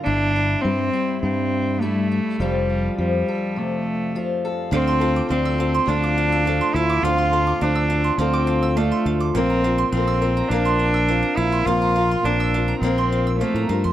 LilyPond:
<<
  \new Staff \with { instrumentName = "Mandolin" } { \time 4/4 \key d \minor \tempo 4 = 104 r1 | r1 | f''16 c'''16 f''16 d'''16 f''16 e'''16 f''16 c'''16 f''16 d'''16 f''16 e'''16 f''16 c'''16 f''16 d'''16 | f''16 c'''16 f''16 d'''16 f''16 e'''16 f''16 c'''16 f''16 d'''16 f''16 e'''16 f''16 c'''16 f''16 d'''16 |
f''16 bes''16 f''16 c'''16 f''16 e'''16 f''16 bes''16 f''16 c'''16 f''16 e'''16 f''16 bes''16 f''16 c'''16 | f''16 bes''16 f''16 c'''16 f''16 e'''16 f''16 bes''16 f''16 c'''16 f''16 e'''16 f''16 bes''16 f''16 c'''16 | }
  \new Staff \with { instrumentName = "Steel-string acoustic guitar" } { \time 4/4 \key d \minor r1 | r1 | <d f c' f' a'>8 <c' f' a'>8 <f c' f' a'>8 <c' f' a'>8 <d f c' f' a'>4 <f c' f' a'>8 <c' f' a'>8 | <d f c' f' a'>8 <c' f' a'>8 <f c' f' a'>4 <d f c' f' a'>4 <f c' f' a'>4 |
<bes c' f' bes'>8 <c' f' bes'>8 <bes c' f' bes'>8 <c' f' bes'>8 <bes c' f' bes'>4 <bes c' f' bes'>4 | <bes c' f' bes'>8 <c' f' bes'>8 <bes c' f' bes'>8 <c' f' bes'>8 <bes c' f' bes'>4 <bes c' f' bes'>8 <c' f' bes'>8 | }
  \new Staff \with { instrumentName = "Steel-string acoustic guitar" } { \time 4/4 \key d \minor << { e'8 e'4 e'4. e'8 e'8 | <f g f' a'>8 f'4 a'4. f'8 a'8 | r1 | r1 |
r1 | r1 | } \\ { g,4 g4 g,4 g4 | f,4 f4 c4 f4 | r1 | r1 |
r1 | r1 | } >> }
  \new Staff \with { instrumentName = "Felt piano" } { \time 4/4 \key d \minor r1 | r1 | <a d' f' c''>8 r8 <a d' f' d''>8 r8 <a d' f' a'>8 r8 <a d' f' c''>8 r8 | <a d' f' c''>8 r8 <a d' f' c''>8 r8 <a d' f' c''>8 r8 <a d' f' d''>8 r8 |
<bes c' f' c''>8 r8 <bes c' f' a'>8 r8 <bes c' f' c''>8 r8 <bes c' f' d''>8 r8 | <bes c' f' c''>8 r8 <bes c' f' d''>8 r8 <bes c' f' c''>8 r8 <f c' f' c''>8 r8 | }
  \new Staff \with { instrumentName = "Felt piano" } { \clef bass \time 4/4 \key d \minor r1 | r1 | <d, d>1 | <d, d>1 |
<bes,, bes,>1 | <bes,, bes,>1 | }
  \new Staff \with { instrumentName = "Cello" } { \time 4/4 \key d \minor d'4 c'4 c'4 a4 | g4 g4 a4. r8 | c'4 c'4 d'4. e'8 | f'4 d'4 c'4 a8. r16 |
c'4 c'4 d'4. e'8 | f'4 d'4 c'4 a8. r16 | }
  \new Staff \with { instrumentName = "Fingered electric bass" } { \clef bass \time 4/4 \key d \minor g,,4 g,8 r8 g,2 | f,,4 f,8 r2 r8 | d,4 d,4 d,4. d,8 | d,4 d,4 d,4. d,8 |
bes,,4 bes,,4 bes,,4. bes,,8 | bes,,4 bes,,4 bes,,4~ bes,,16 a,16 g,16 f,16 | }
>>